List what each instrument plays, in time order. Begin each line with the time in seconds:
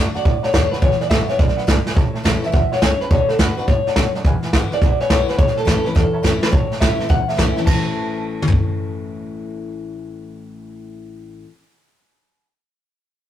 Already playing: steel-string acoustic guitar D3 A3 D4
0.00 steel-string acoustic guitar F#4
0.14 steel-string acoustic guitar D4 F#4, upright piano D5 F#5 A5, clean electric guitar D5, muted upright bass stroke, snare
0.24 upright bass A2, upright piano D5 F#5 A5, kick, snare
0.42 clean electric guitar C#5, upright piano D5 F#5 A5, muted upright bass stroke, snare
0.52 upright bass D#2, steel-string acoustic guitar D3 A3 D4 F#4, clean electric guitar C#5, upright piano D5 F#5 A5, kick, snare, hi-hat pedal
0.71 clean electric guitar B4, upright piano D5 F#5 A5, muted upright bass stroke, snare
0.81 upright bass E1, steel-string acoustic guitar E2, upright piano B4 E5 G#5, clean electric guitar C#5, kick, snare
0.92 snare
1.00 upright piano B4 E5 G#5, clean electric guitar D5, muted upright bass stroke, snare
1.10 upright bass G#1, steel-string acoustic guitar D3 G#3 B3 E4, upright piano B4, clean electric guitar E5, kick, snare, hi-hat pedal
1.27 steel-string acoustic guitar B3 E4, upright piano B4 E5 G#5, clean electric guitar C#5, muted upright bass stroke, snare
1.38 upright bass B1, steel-string acoustic guitar F#2, upright piano B4 E5 G#5, clean electric guitar D5, kick, snare
1.49 snare
1.56 upright piano B4 E5 F#5, muted upright bass stroke, snare
1.67 upright bass C#2, steel-string acoustic guitar G#2, upright piano B4 E5 G#5, kick, snare, hi-hat pedal
1.86 upright piano B4 E5 G#5, muted upright bass stroke, snare
1.95 upright bass A1, steel-string acoustic guitar A2, upright piano C#5 E5 A5, kick, snare
2.14 upright piano C#5 E5 A5, muted upright bass stroke, snare
2.23 upright bass C#2, steel-string acoustic guitar E3 A3 C#4 E4, upright piano C#5 E5 A5, kick, snare, hi-hat pedal
2.42 steel-string acoustic guitar C#4 E4, upright piano C#5 E5 A5, muted upright bass stroke, snare
2.46 clean electric guitar E5
2.52 upright bass E2, steel-string acoustic guitar B2, upright piano C#5 E5 A5, kick, snare
2.72 upright piano C#5 E5 F#5, clean electric guitar C#5, muted upright bass stroke, snare
2.82 upright bass C#2, steel-string acoustic guitar C#3, upright piano C#5 E5 A5, clean electric guitar C#5, kick, snare, hi-hat pedal
3.01 clean electric guitar B4, upright piano C#5 E5 A5, muted upright bass stroke, snare
3.11 upright bass D2, steel-string acoustic guitar D3, clean electric guitar C#5, upright piano D5 F#5 A5, kick, snare
3.28 clean electric guitar A4, upright piano D5 F#5 A5, muted upright bass stroke, snare
3.39 upright bass F#2, steel-string acoustic guitar D3 A3 D4 F#4, clean electric guitar B4, upright piano D5 F#5 A5, kick, snare, hi-hat pedal
3.57 steel-string acoustic guitar D4 F#4, clean electric guitar B4, upright piano D5 F#5 A5, muted upright bass stroke, snare
3.68 steel-string acoustic guitar G#2, upright bass A2, clean electric guitar C#5, upright piano D5 F#5 A5, kick, snare
3.86 upright piano D5 F#5 A5, muted upright bass stroke, snare
3.96 steel-string acoustic guitar F#2, upright bass B2, upright piano F#5 A5, kick, snare, hi-hat pedal
4.15 upright piano D5 F#5 A5, muted upright bass stroke, snare
4.24 upright bass E1, steel-string acoustic guitar E2, upright piano B4 E5 G#5, kick, snare
4.43 upright piano B4 E5 G#5, muted upright bass stroke, snare
4.53 upright bass G#1, steel-string acoustic guitar D3 G#3 B3 E4, upright piano E5 G#5, kick, snare, hi-hat pedal
4.72 steel-string acoustic guitar B3 E4, upright piano B4 E5 G#5, clean electric guitar D5, muted upright bass stroke, snare
4.82 upright bass B1, steel-string acoustic guitar B2, upright piano B4 E5 G#5, kick, snare
5.00 upright piano B4 E5 G#5, clean electric guitar C#5, muted upright bass stroke, snare
5.10 upright bass B1, steel-string acoustic guitar D3 G#3 B3 E4, clean electric guitar C#5, upright piano E5 G#5, kick, snare, hi-hat pedal
5.28 steel-string acoustic guitar B3 E4, upright piano B4 E5 G#5, clean electric guitar B4, muted upright bass stroke, snare
5.38 upright bass A1, steel-string acoustic guitar A2, upright piano C#5 E5 A5, clean electric guitar C#5, kick, snare
5.47 snare
5.56 clean electric guitar A4, upright piano C#5 E5 A5, muted upright bass stroke, snare
5.65 upright bass C#2, steel-string acoustic guitar E3 A3 C#4 E4, clean electric guitar A4, upright piano C#5 E5 A5, kick, snare, hi-hat pedal
5.84 steel-string acoustic guitar C#4 E4, clean electric guitar B4, upright piano C#5 E5 A5, muted upright bass stroke, snare
5.95 steel-string acoustic guitar E2, upright bass E2, clean electric guitar A4, upright piano C#5 E5 A5, kick, snare
6.13 upright piano C#5 E5 A5, muted upright bass stroke
6.22 upright bass F#2, steel-string acoustic guitar E3 A3 C#4 E4, upright piano C#5 E5 A5, kick, snare, hi-hat pedal
6.41 steel-string acoustic guitar C#4 E4, clean electric guitar B4, upright piano C#5 E5 A5, muted upright bass stroke, snare
6.52 upright bass A1, steel-string acoustic guitar A2, clean electric guitar C#5, upright piano C#5 E5 A5, kick
6.71 upright piano C#5 E5 A5, muted upright bass stroke, snare
6.77 steel-string acoustic guitar E3, upright piano C#5, clean electric guitar E5, snare
6.81 upright bass A1, steel-string acoustic guitar A3 C#4 E4, upright piano E5 A5, kick, snare, hi-hat pedal
6.99 steel-string acoustic guitar C#4 E4, upright piano C#5 E5 A5, muted upright bass stroke, snare
7.09 upright bass C#2, steel-string acoustic guitar E2, upright piano C#5 E5 A5, clean electric guitar F#5, kick, snare
7.28 upright piano C#5 E5 A5, clean electric guitar E5, muted upright bass stroke, snare
7.34 steel-string acoustic guitar E3, snare
7.38 upright bass C#2, steel-string acoustic guitar A3 C#4 E4, upright piano C#5 E5 A5, kick, snare, hi-hat pedal
7.56 steel-string acoustic guitar C#4 E4, upright piano C#5 E5 A5, muted upright bass stroke, snare
7.65 upright bass A1, steel-string acoustic guitar A2 E3 A3 C#4, upright piano C#5 E5 A5, clean electric guitar A5, kick, crash
7.69 steel-string acoustic guitar E4
8.42 mid tom
8.47 floor tom
8.52 kick